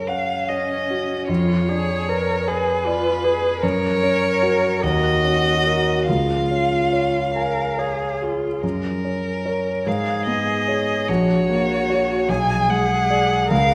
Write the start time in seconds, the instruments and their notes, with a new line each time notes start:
Already playing: grand piano F#2 C#4 C#5
0.08 cello C#4, violin F5, grand piano F#5
0.49 grand piano C#5, violin D#5
0.90 grand piano F#4
1.28 grand piano F2, cello F4, violin C#5
1.69 grand piano D4, cello G#4
2.09 cello A#4, grand piano B4
2.47 cello G#4, violin B4, grand piano G#5
2.86 cello F4, grand piano D5
3.24 cello G#4, grand piano B4
3.62 grand piano F#2, cello A#4, violin C#5
4.03 grand piano C#4
4.42 grand piano F#4 A#4
4.83 grand piano D#2, cello F#4, violin D#5
5.24 grand piano C#4
5.66 grand piano F#4 A#4
6.07 grand piano C#2, cello F4, violin F5
6.51 grand piano C#4
6.93 grand piano C#5
7.35 cello A#4, grand piano G#5
7.78 cello G#4, grand piano C#5
8.22 cello F4, grand piano G#4
8.63 grand piano F#2, violin A#4
9.05 grand piano C#4
9.45 grand piano A#4 C#5
9.86 grand piano G#2, cello G#4, violin F5
10.26 grand piano B3, violin D#5
10.68 grand piano G#4 C#5
11.08 grand piano A#1, cello F#4, violin C#5
11.50 grand piano A#3
11.89 grand piano F#4 C#5
12.29 grand piano B1, cello G#4, violin G#5
12.69 grand piano G#3, violin F#5
13.10 grand piano G#4 D5
13.51 grand piano C#2, cello A#4, violin F5